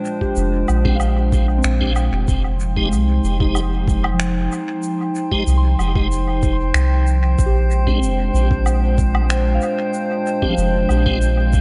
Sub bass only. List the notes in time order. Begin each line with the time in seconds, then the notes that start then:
0.37 F1
0.69 A#1
1.64 A#1
2.12 F1
2.28 F1
2.92 C2
3.24 F1
5.47 C2
5.79 F1
6.74 C2
7.38 A#1
8.02 F1
8.34 A#1
10.57 F1
10.89 A#1